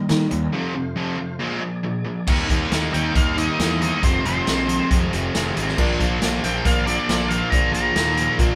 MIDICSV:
0, 0, Header, 1, 8, 480
1, 0, Start_track
1, 0, Tempo, 436364
1, 591, Time_signature, 4, 2, 24, 8
1, 9406, End_track
2, 0, Start_track
2, 0, Title_t, "Lead electric guitar"
2, 0, Program_c, 0, 29
2, 3230, Note_on_c, 0, 79, 92
2, 3475, Note_on_c, 0, 77, 98
2, 3482, Note_off_c, 0, 79, 0
2, 3720, Note_off_c, 0, 77, 0
2, 3725, Note_on_c, 0, 75, 94
2, 4193, Note_off_c, 0, 75, 0
2, 4206, Note_on_c, 0, 75, 90
2, 4426, Note_off_c, 0, 75, 0
2, 4445, Note_on_c, 0, 72, 90
2, 4679, Note_off_c, 0, 72, 0
2, 4692, Note_on_c, 0, 72, 80
2, 5362, Note_off_c, 0, 72, 0
2, 7087, Note_on_c, 0, 79, 88
2, 7321, Note_on_c, 0, 77, 92
2, 7329, Note_off_c, 0, 79, 0
2, 7547, Note_off_c, 0, 77, 0
2, 7551, Note_on_c, 0, 74, 85
2, 8016, Note_on_c, 0, 77, 89
2, 8046, Note_off_c, 0, 74, 0
2, 8247, Note_off_c, 0, 77, 0
2, 8253, Note_on_c, 0, 82, 103
2, 8491, Note_off_c, 0, 82, 0
2, 8504, Note_on_c, 0, 82, 94
2, 9182, Note_off_c, 0, 82, 0
2, 9406, End_track
3, 0, Start_track
3, 0, Title_t, "Upright piano"
3, 0, Program_c, 1, 0
3, 6355, Note_on_c, 1, 65, 91
3, 6364, Note_on_c, 1, 70, 87
3, 6369, Note_on_c, 1, 74, 99
3, 7123, Note_off_c, 1, 65, 0
3, 7128, Note_off_c, 1, 70, 0
3, 7130, Note_off_c, 1, 74, 0
3, 7308, Note_on_c, 1, 65, 72
3, 7317, Note_on_c, 1, 70, 70
3, 7323, Note_on_c, 1, 74, 88
3, 8078, Note_off_c, 1, 65, 0
3, 8083, Note_off_c, 1, 70, 0
3, 8086, Note_off_c, 1, 74, 0
3, 8272, Note_on_c, 1, 65, 78
3, 8279, Note_on_c, 1, 70, 72
3, 8285, Note_on_c, 1, 74, 80
3, 9038, Note_off_c, 1, 65, 0
3, 9041, Note_off_c, 1, 70, 0
3, 9044, Note_off_c, 1, 74, 0
3, 9217, Note_on_c, 1, 65, 93
3, 9225, Note_on_c, 1, 70, 87
3, 9230, Note_on_c, 1, 74, 96
3, 9406, Note_off_c, 1, 65, 0
3, 9406, Note_off_c, 1, 70, 0
3, 9406, Note_off_c, 1, 74, 0
3, 9406, End_track
4, 0, Start_track
4, 0, Title_t, "Tonewheel organ"
4, 0, Program_c, 2, 16
4, 0, Note_on_c, 2, 55, 72
4, 0, Note_on_c, 2, 63, 65
4, 0, Note_on_c, 2, 70, 69
4, 569, Note_off_c, 2, 55, 0
4, 572, Note_off_c, 2, 63, 0
4, 572, Note_off_c, 2, 70, 0
4, 583, Note_on_c, 2, 57, 68
4, 584, Note_on_c, 2, 72, 67
4, 591, Note_on_c, 2, 65, 64
4, 1520, Note_on_c, 2, 68, 67
4, 1526, Note_on_c, 2, 74, 68
4, 1532, Note_on_c, 2, 58, 68
4, 1541, Note_off_c, 2, 57, 0
4, 1541, Note_off_c, 2, 72, 0
4, 1545, Note_off_c, 2, 65, 0
4, 2490, Note_off_c, 2, 68, 0
4, 2493, Note_off_c, 2, 74, 0
4, 2496, Note_off_c, 2, 58, 0
4, 2507, Note_on_c, 2, 60, 64
4, 2512, Note_on_c, 2, 67, 69
4, 2514, Note_on_c, 2, 75, 70
4, 4416, Note_off_c, 2, 60, 0
4, 4418, Note_off_c, 2, 67, 0
4, 4419, Note_off_c, 2, 75, 0
4, 4434, Note_on_c, 2, 68, 68
4, 4436, Note_on_c, 2, 77, 70
4, 4440, Note_on_c, 2, 60, 72
4, 6337, Note_off_c, 2, 68, 0
4, 6337, Note_off_c, 2, 77, 0
4, 6339, Note_off_c, 2, 60, 0
4, 6349, Note_on_c, 2, 70, 69
4, 6351, Note_on_c, 2, 77, 72
4, 6361, Note_on_c, 2, 62, 69
4, 9406, Note_off_c, 2, 62, 0
4, 9406, Note_off_c, 2, 70, 0
4, 9406, Note_off_c, 2, 77, 0
4, 9406, End_track
5, 0, Start_track
5, 0, Title_t, "Overdriven electric guitar"
5, 0, Program_c, 3, 29
5, 105, Note_on_c, 3, 58, 73
5, 324, Note_off_c, 3, 58, 0
5, 342, Note_on_c, 3, 58, 78
5, 563, Note_off_c, 3, 58, 0
5, 1541, Note_on_c, 3, 58, 94
5, 1774, Note_off_c, 3, 58, 0
5, 9406, End_track
6, 0, Start_track
6, 0, Title_t, "Overdriven electric guitar"
6, 0, Program_c, 4, 29
6, 99, Note_on_c, 4, 51, 70
6, 105, Note_on_c, 4, 55, 74
6, 321, Note_off_c, 4, 51, 0
6, 324, Note_off_c, 4, 55, 0
6, 338, Note_on_c, 4, 51, 69
6, 341, Note_on_c, 4, 55, 82
6, 561, Note_off_c, 4, 51, 0
6, 562, Note_off_c, 4, 55, 0
6, 576, Note_on_c, 4, 41, 88
6, 581, Note_on_c, 4, 48, 99
6, 587, Note_on_c, 4, 53, 101
6, 810, Note_off_c, 4, 41, 0
6, 812, Note_off_c, 4, 48, 0
6, 815, Note_off_c, 4, 53, 0
6, 827, Note_on_c, 4, 41, 67
6, 835, Note_on_c, 4, 48, 71
6, 1040, Note_off_c, 4, 41, 0
6, 1045, Note_off_c, 4, 48, 0
6, 1053, Note_on_c, 4, 41, 82
6, 1058, Note_on_c, 4, 48, 82
6, 1067, Note_on_c, 4, 53, 91
6, 1284, Note_off_c, 4, 41, 0
6, 1292, Note_off_c, 4, 48, 0
6, 1296, Note_off_c, 4, 53, 0
6, 1297, Note_on_c, 4, 41, 61
6, 1305, Note_on_c, 4, 48, 79
6, 1522, Note_off_c, 4, 41, 0
6, 1526, Note_off_c, 4, 48, 0
6, 1535, Note_on_c, 4, 46, 87
6, 1545, Note_on_c, 4, 53, 88
6, 1551, Note_on_c, 4, 56, 99
6, 1762, Note_off_c, 4, 46, 0
6, 1769, Note_off_c, 4, 53, 0
6, 1775, Note_on_c, 4, 46, 59
6, 1779, Note_off_c, 4, 56, 0
6, 1782, Note_on_c, 4, 53, 68
6, 2002, Note_off_c, 4, 46, 0
6, 2005, Note_off_c, 4, 53, 0
6, 2017, Note_on_c, 4, 46, 67
6, 2021, Note_on_c, 4, 53, 78
6, 2237, Note_off_c, 4, 46, 0
6, 2242, Note_off_c, 4, 53, 0
6, 2250, Note_on_c, 4, 46, 65
6, 2255, Note_on_c, 4, 53, 72
6, 2480, Note_off_c, 4, 46, 0
6, 2482, Note_off_c, 4, 53, 0
6, 2495, Note_on_c, 4, 51, 91
6, 2504, Note_on_c, 4, 55, 99
6, 2506, Note_on_c, 4, 58, 99
6, 2514, Note_on_c, 4, 63, 103
6, 2714, Note_off_c, 4, 51, 0
6, 2722, Note_off_c, 4, 55, 0
6, 2727, Note_off_c, 4, 58, 0
6, 2727, Note_on_c, 4, 51, 85
6, 2731, Note_off_c, 4, 63, 0
6, 2736, Note_on_c, 4, 55, 85
6, 2740, Note_on_c, 4, 58, 87
6, 2744, Note_on_c, 4, 63, 88
6, 2963, Note_off_c, 4, 51, 0
6, 2965, Note_off_c, 4, 55, 0
6, 2971, Note_off_c, 4, 58, 0
6, 2976, Note_on_c, 4, 51, 78
6, 2978, Note_off_c, 4, 63, 0
6, 2978, Note_on_c, 4, 55, 80
6, 2984, Note_on_c, 4, 58, 83
6, 2991, Note_on_c, 4, 63, 78
6, 3203, Note_off_c, 4, 51, 0
6, 3207, Note_off_c, 4, 55, 0
6, 3212, Note_off_c, 4, 58, 0
6, 3216, Note_on_c, 4, 51, 84
6, 3217, Note_off_c, 4, 63, 0
6, 3220, Note_on_c, 4, 55, 85
6, 3226, Note_on_c, 4, 58, 86
6, 3230, Note_on_c, 4, 63, 93
6, 3443, Note_off_c, 4, 51, 0
6, 3456, Note_off_c, 4, 55, 0
6, 3457, Note_on_c, 4, 51, 87
6, 3458, Note_off_c, 4, 58, 0
6, 3465, Note_off_c, 4, 63, 0
6, 3469, Note_on_c, 4, 55, 97
6, 3471, Note_on_c, 4, 58, 100
6, 3479, Note_on_c, 4, 63, 102
6, 3687, Note_off_c, 4, 51, 0
6, 3697, Note_off_c, 4, 55, 0
6, 3698, Note_off_c, 4, 58, 0
6, 3700, Note_on_c, 4, 51, 75
6, 3708, Note_off_c, 4, 63, 0
6, 3710, Note_on_c, 4, 55, 78
6, 3711, Note_on_c, 4, 58, 81
6, 3721, Note_on_c, 4, 63, 89
6, 3933, Note_off_c, 4, 51, 0
6, 3941, Note_off_c, 4, 55, 0
6, 3945, Note_off_c, 4, 58, 0
6, 3947, Note_on_c, 4, 51, 76
6, 3948, Note_off_c, 4, 63, 0
6, 3954, Note_on_c, 4, 55, 85
6, 3958, Note_on_c, 4, 58, 89
6, 3961, Note_on_c, 4, 63, 100
6, 4181, Note_off_c, 4, 51, 0
6, 4187, Note_off_c, 4, 55, 0
6, 4194, Note_off_c, 4, 58, 0
6, 4195, Note_on_c, 4, 51, 78
6, 4200, Note_on_c, 4, 55, 80
6, 4201, Note_off_c, 4, 63, 0
6, 4207, Note_on_c, 4, 58, 89
6, 4214, Note_on_c, 4, 63, 92
6, 4423, Note_off_c, 4, 51, 0
6, 4426, Note_off_c, 4, 55, 0
6, 4428, Note_on_c, 4, 41, 87
6, 4429, Note_off_c, 4, 58, 0
6, 4433, Note_off_c, 4, 63, 0
6, 4433, Note_on_c, 4, 48, 100
6, 4440, Note_on_c, 4, 53, 97
6, 4444, Note_on_c, 4, 56, 112
6, 4453, Note_on_c, 4, 60, 112
6, 4653, Note_off_c, 4, 41, 0
6, 4662, Note_off_c, 4, 48, 0
6, 4666, Note_on_c, 4, 41, 81
6, 4669, Note_off_c, 4, 56, 0
6, 4673, Note_off_c, 4, 53, 0
6, 4675, Note_on_c, 4, 48, 81
6, 4677, Note_off_c, 4, 60, 0
6, 4678, Note_on_c, 4, 53, 89
6, 4682, Note_on_c, 4, 56, 81
6, 4690, Note_on_c, 4, 60, 93
6, 4899, Note_off_c, 4, 41, 0
6, 4907, Note_off_c, 4, 48, 0
6, 4912, Note_on_c, 4, 41, 81
6, 4917, Note_off_c, 4, 53, 0
6, 4918, Note_off_c, 4, 56, 0
6, 4920, Note_off_c, 4, 60, 0
6, 4920, Note_on_c, 4, 48, 82
6, 4922, Note_on_c, 4, 53, 84
6, 4931, Note_on_c, 4, 56, 95
6, 4933, Note_on_c, 4, 60, 94
6, 5137, Note_off_c, 4, 41, 0
6, 5145, Note_off_c, 4, 48, 0
6, 5150, Note_on_c, 4, 41, 89
6, 5153, Note_off_c, 4, 56, 0
6, 5156, Note_off_c, 4, 60, 0
6, 5158, Note_on_c, 4, 48, 90
6, 5163, Note_off_c, 4, 53, 0
6, 5167, Note_on_c, 4, 53, 88
6, 5167, Note_on_c, 4, 56, 89
6, 5170, Note_on_c, 4, 60, 98
6, 5386, Note_off_c, 4, 41, 0
6, 5394, Note_off_c, 4, 48, 0
6, 5399, Note_on_c, 4, 41, 96
6, 5404, Note_off_c, 4, 56, 0
6, 5407, Note_on_c, 4, 48, 105
6, 5409, Note_off_c, 4, 53, 0
6, 5410, Note_off_c, 4, 60, 0
6, 5413, Note_on_c, 4, 53, 99
6, 5417, Note_on_c, 4, 56, 105
6, 5423, Note_on_c, 4, 60, 111
6, 5623, Note_off_c, 4, 41, 0
6, 5631, Note_off_c, 4, 48, 0
6, 5637, Note_on_c, 4, 41, 88
6, 5641, Note_off_c, 4, 56, 0
6, 5645, Note_off_c, 4, 53, 0
6, 5645, Note_on_c, 4, 48, 86
6, 5647, Note_off_c, 4, 60, 0
6, 5650, Note_on_c, 4, 53, 87
6, 5655, Note_on_c, 4, 56, 80
6, 5660, Note_on_c, 4, 60, 89
6, 5861, Note_off_c, 4, 41, 0
6, 5869, Note_off_c, 4, 48, 0
6, 5874, Note_on_c, 4, 41, 85
6, 5879, Note_off_c, 4, 56, 0
6, 5880, Note_off_c, 4, 53, 0
6, 5883, Note_on_c, 4, 48, 88
6, 5884, Note_off_c, 4, 60, 0
6, 5885, Note_on_c, 4, 53, 90
6, 5892, Note_on_c, 4, 56, 92
6, 5898, Note_on_c, 4, 60, 85
6, 6091, Note_off_c, 4, 41, 0
6, 6097, Note_off_c, 4, 48, 0
6, 6104, Note_on_c, 4, 41, 83
6, 6110, Note_on_c, 4, 48, 90
6, 6111, Note_off_c, 4, 53, 0
6, 6112, Note_off_c, 4, 56, 0
6, 6115, Note_on_c, 4, 53, 91
6, 6116, Note_off_c, 4, 60, 0
6, 6125, Note_on_c, 4, 56, 90
6, 6129, Note_on_c, 4, 60, 101
6, 6337, Note_off_c, 4, 41, 0
6, 6340, Note_off_c, 4, 48, 0
6, 6347, Note_off_c, 4, 56, 0
6, 6349, Note_off_c, 4, 60, 0
6, 6351, Note_on_c, 4, 46, 97
6, 6354, Note_off_c, 4, 53, 0
6, 6359, Note_on_c, 4, 53, 97
6, 6364, Note_on_c, 4, 58, 106
6, 6370, Note_on_c, 4, 62, 106
6, 6586, Note_off_c, 4, 46, 0
6, 6590, Note_off_c, 4, 53, 0
6, 6591, Note_on_c, 4, 46, 80
6, 6594, Note_on_c, 4, 53, 87
6, 6595, Note_off_c, 4, 58, 0
6, 6599, Note_off_c, 4, 62, 0
6, 6599, Note_on_c, 4, 58, 97
6, 6603, Note_on_c, 4, 62, 98
6, 6824, Note_off_c, 4, 46, 0
6, 6829, Note_on_c, 4, 46, 82
6, 6836, Note_off_c, 4, 58, 0
6, 6837, Note_off_c, 4, 53, 0
6, 6840, Note_on_c, 4, 58, 89
6, 6841, Note_on_c, 4, 53, 85
6, 6844, Note_off_c, 4, 62, 0
6, 6848, Note_on_c, 4, 62, 99
6, 7068, Note_off_c, 4, 46, 0
6, 7073, Note_on_c, 4, 46, 83
6, 7077, Note_off_c, 4, 53, 0
6, 7081, Note_on_c, 4, 53, 84
6, 7082, Note_off_c, 4, 58, 0
6, 7085, Note_off_c, 4, 62, 0
6, 7087, Note_on_c, 4, 58, 84
6, 7089, Note_on_c, 4, 62, 93
6, 7301, Note_off_c, 4, 46, 0
6, 7313, Note_off_c, 4, 53, 0
6, 7314, Note_on_c, 4, 46, 95
6, 7316, Note_off_c, 4, 58, 0
6, 7323, Note_off_c, 4, 62, 0
6, 7327, Note_on_c, 4, 53, 95
6, 7330, Note_on_c, 4, 58, 99
6, 7337, Note_on_c, 4, 62, 109
6, 7535, Note_off_c, 4, 46, 0
6, 7543, Note_off_c, 4, 53, 0
6, 7547, Note_off_c, 4, 58, 0
6, 7548, Note_on_c, 4, 46, 91
6, 7557, Note_off_c, 4, 62, 0
6, 7557, Note_on_c, 4, 53, 91
6, 7560, Note_on_c, 4, 58, 90
6, 7570, Note_on_c, 4, 62, 99
6, 7772, Note_off_c, 4, 46, 0
6, 7779, Note_off_c, 4, 53, 0
6, 7785, Note_on_c, 4, 46, 85
6, 7789, Note_off_c, 4, 58, 0
6, 7793, Note_on_c, 4, 53, 90
6, 7794, Note_off_c, 4, 62, 0
6, 7802, Note_on_c, 4, 58, 92
6, 7808, Note_on_c, 4, 62, 94
6, 8014, Note_off_c, 4, 46, 0
6, 8020, Note_off_c, 4, 53, 0
6, 8024, Note_off_c, 4, 58, 0
6, 8027, Note_on_c, 4, 46, 82
6, 8028, Note_off_c, 4, 62, 0
6, 8033, Note_on_c, 4, 53, 85
6, 8037, Note_on_c, 4, 58, 96
6, 8041, Note_on_c, 4, 62, 92
6, 8255, Note_off_c, 4, 46, 0
6, 8261, Note_off_c, 4, 53, 0
6, 8266, Note_off_c, 4, 58, 0
6, 8269, Note_on_c, 4, 46, 93
6, 8274, Note_off_c, 4, 62, 0
6, 8274, Note_on_c, 4, 53, 98
6, 8280, Note_on_c, 4, 58, 94
6, 8287, Note_on_c, 4, 62, 108
6, 8483, Note_off_c, 4, 46, 0
6, 8488, Note_off_c, 4, 53, 0
6, 8496, Note_on_c, 4, 46, 93
6, 8497, Note_off_c, 4, 58, 0
6, 8501, Note_on_c, 4, 53, 85
6, 8504, Note_off_c, 4, 62, 0
6, 8510, Note_on_c, 4, 58, 83
6, 8517, Note_on_c, 4, 62, 91
6, 8731, Note_off_c, 4, 46, 0
6, 8734, Note_off_c, 4, 53, 0
6, 8739, Note_off_c, 4, 58, 0
6, 8742, Note_off_c, 4, 62, 0
6, 8744, Note_on_c, 4, 46, 80
6, 8747, Note_on_c, 4, 53, 90
6, 8752, Note_on_c, 4, 58, 92
6, 8755, Note_on_c, 4, 62, 96
6, 8965, Note_off_c, 4, 46, 0
6, 8974, Note_off_c, 4, 53, 0
6, 8975, Note_off_c, 4, 58, 0
6, 8978, Note_on_c, 4, 46, 92
6, 8981, Note_off_c, 4, 62, 0
6, 8988, Note_on_c, 4, 53, 95
6, 8989, Note_on_c, 4, 58, 95
6, 8994, Note_on_c, 4, 62, 105
6, 9203, Note_off_c, 4, 46, 0
6, 9212, Note_off_c, 4, 53, 0
6, 9216, Note_on_c, 4, 46, 103
6, 9217, Note_off_c, 4, 58, 0
6, 9222, Note_off_c, 4, 62, 0
6, 9225, Note_on_c, 4, 53, 103
6, 9230, Note_on_c, 4, 58, 102
6, 9235, Note_on_c, 4, 62, 109
6, 9406, Note_off_c, 4, 46, 0
6, 9406, Note_off_c, 4, 53, 0
6, 9406, Note_off_c, 4, 58, 0
6, 9406, Note_off_c, 4, 62, 0
6, 9406, End_track
7, 0, Start_track
7, 0, Title_t, "Picked electric bass"
7, 0, Program_c, 5, 34
7, 117, Note_on_c, 5, 51, 91
7, 272, Note_off_c, 5, 51, 0
7, 353, Note_on_c, 5, 39, 83
7, 510, Note_off_c, 5, 39, 0
7, 2506, Note_on_c, 5, 39, 87
7, 2681, Note_off_c, 5, 39, 0
7, 2747, Note_on_c, 5, 39, 91
7, 2921, Note_off_c, 5, 39, 0
7, 2991, Note_on_c, 5, 39, 85
7, 3164, Note_off_c, 5, 39, 0
7, 3231, Note_on_c, 5, 39, 76
7, 3404, Note_off_c, 5, 39, 0
7, 3474, Note_on_c, 5, 39, 87
7, 3816, Note_off_c, 5, 39, 0
7, 3955, Note_on_c, 5, 40, 87
7, 4297, Note_off_c, 5, 40, 0
7, 4437, Note_on_c, 5, 29, 100
7, 4608, Note_off_c, 5, 29, 0
7, 4680, Note_on_c, 5, 29, 85
7, 4850, Note_off_c, 5, 29, 0
7, 4929, Note_on_c, 5, 34, 89
7, 5265, Note_off_c, 5, 34, 0
7, 5403, Note_on_c, 5, 41, 89
7, 5572, Note_off_c, 5, 41, 0
7, 5650, Note_on_c, 5, 29, 94
7, 5816, Note_off_c, 5, 29, 0
7, 5890, Note_on_c, 5, 29, 92
7, 6056, Note_off_c, 5, 29, 0
7, 6133, Note_on_c, 5, 32, 89
7, 6298, Note_off_c, 5, 32, 0
7, 6364, Note_on_c, 5, 34, 98
7, 6532, Note_off_c, 5, 34, 0
7, 6604, Note_on_c, 5, 34, 89
7, 6772, Note_off_c, 5, 34, 0
7, 6852, Note_on_c, 5, 34, 91
7, 7016, Note_off_c, 5, 34, 0
7, 7087, Note_on_c, 5, 34, 83
7, 7253, Note_off_c, 5, 34, 0
7, 7321, Note_on_c, 5, 34, 98
7, 7659, Note_off_c, 5, 34, 0
7, 7800, Note_on_c, 5, 34, 90
7, 8137, Note_off_c, 5, 34, 0
7, 8277, Note_on_c, 5, 34, 98
7, 8445, Note_off_c, 5, 34, 0
7, 8513, Note_on_c, 5, 34, 90
7, 8683, Note_off_c, 5, 34, 0
7, 8750, Note_on_c, 5, 39, 92
7, 9089, Note_off_c, 5, 39, 0
7, 9230, Note_on_c, 5, 46, 93
7, 9399, Note_off_c, 5, 46, 0
7, 9406, End_track
8, 0, Start_track
8, 0, Title_t, "Drums"
8, 100, Note_on_c, 9, 42, 81
8, 103, Note_on_c, 9, 38, 109
8, 210, Note_off_c, 9, 42, 0
8, 213, Note_off_c, 9, 38, 0
8, 339, Note_on_c, 9, 42, 57
8, 449, Note_off_c, 9, 42, 0
8, 2501, Note_on_c, 9, 49, 110
8, 2503, Note_on_c, 9, 36, 104
8, 2611, Note_off_c, 9, 49, 0
8, 2613, Note_off_c, 9, 36, 0
8, 2745, Note_on_c, 9, 36, 79
8, 2747, Note_on_c, 9, 42, 73
8, 2855, Note_off_c, 9, 36, 0
8, 2857, Note_off_c, 9, 42, 0
8, 2987, Note_on_c, 9, 42, 92
8, 2991, Note_on_c, 9, 38, 109
8, 3097, Note_off_c, 9, 42, 0
8, 3101, Note_off_c, 9, 38, 0
8, 3234, Note_on_c, 9, 42, 64
8, 3344, Note_off_c, 9, 42, 0
8, 3470, Note_on_c, 9, 36, 110
8, 3470, Note_on_c, 9, 42, 92
8, 3580, Note_off_c, 9, 36, 0
8, 3580, Note_off_c, 9, 42, 0
8, 3714, Note_on_c, 9, 42, 68
8, 3824, Note_off_c, 9, 42, 0
8, 3954, Note_on_c, 9, 42, 90
8, 3957, Note_on_c, 9, 38, 117
8, 4064, Note_off_c, 9, 42, 0
8, 4067, Note_off_c, 9, 38, 0
8, 4197, Note_on_c, 9, 42, 71
8, 4307, Note_off_c, 9, 42, 0
8, 4433, Note_on_c, 9, 42, 94
8, 4434, Note_on_c, 9, 36, 102
8, 4543, Note_off_c, 9, 42, 0
8, 4544, Note_off_c, 9, 36, 0
8, 4678, Note_on_c, 9, 42, 72
8, 4788, Note_off_c, 9, 42, 0
8, 4917, Note_on_c, 9, 42, 96
8, 4920, Note_on_c, 9, 38, 116
8, 5027, Note_off_c, 9, 42, 0
8, 5030, Note_off_c, 9, 38, 0
8, 5158, Note_on_c, 9, 42, 69
8, 5268, Note_off_c, 9, 42, 0
8, 5400, Note_on_c, 9, 36, 113
8, 5403, Note_on_c, 9, 42, 102
8, 5510, Note_off_c, 9, 36, 0
8, 5513, Note_off_c, 9, 42, 0
8, 5641, Note_on_c, 9, 42, 78
8, 5751, Note_off_c, 9, 42, 0
8, 5881, Note_on_c, 9, 42, 108
8, 5884, Note_on_c, 9, 38, 115
8, 5991, Note_off_c, 9, 42, 0
8, 5994, Note_off_c, 9, 38, 0
8, 6123, Note_on_c, 9, 42, 78
8, 6233, Note_off_c, 9, 42, 0
8, 6247, Note_on_c, 9, 38, 34
8, 6357, Note_off_c, 9, 38, 0
8, 6359, Note_on_c, 9, 49, 93
8, 6361, Note_on_c, 9, 36, 104
8, 6469, Note_off_c, 9, 49, 0
8, 6471, Note_off_c, 9, 36, 0
8, 6601, Note_on_c, 9, 36, 78
8, 6603, Note_on_c, 9, 42, 73
8, 6711, Note_off_c, 9, 36, 0
8, 6713, Note_off_c, 9, 42, 0
8, 6838, Note_on_c, 9, 42, 104
8, 6841, Note_on_c, 9, 38, 108
8, 6948, Note_off_c, 9, 42, 0
8, 6951, Note_off_c, 9, 38, 0
8, 7081, Note_on_c, 9, 42, 67
8, 7191, Note_off_c, 9, 42, 0
8, 7317, Note_on_c, 9, 42, 91
8, 7319, Note_on_c, 9, 36, 112
8, 7427, Note_off_c, 9, 42, 0
8, 7429, Note_off_c, 9, 36, 0
8, 7558, Note_on_c, 9, 42, 75
8, 7668, Note_off_c, 9, 42, 0
8, 7800, Note_on_c, 9, 42, 93
8, 7803, Note_on_c, 9, 38, 116
8, 7910, Note_off_c, 9, 42, 0
8, 7913, Note_off_c, 9, 38, 0
8, 8034, Note_on_c, 9, 42, 74
8, 8144, Note_off_c, 9, 42, 0
8, 8275, Note_on_c, 9, 36, 113
8, 8276, Note_on_c, 9, 42, 90
8, 8385, Note_off_c, 9, 36, 0
8, 8386, Note_off_c, 9, 42, 0
8, 8517, Note_on_c, 9, 42, 68
8, 8627, Note_off_c, 9, 42, 0
8, 8753, Note_on_c, 9, 42, 105
8, 8756, Note_on_c, 9, 38, 112
8, 8863, Note_off_c, 9, 42, 0
8, 8866, Note_off_c, 9, 38, 0
8, 8990, Note_on_c, 9, 42, 74
8, 9100, Note_off_c, 9, 42, 0
8, 9229, Note_on_c, 9, 36, 112
8, 9230, Note_on_c, 9, 42, 104
8, 9339, Note_off_c, 9, 36, 0
8, 9340, Note_off_c, 9, 42, 0
8, 9406, End_track
0, 0, End_of_file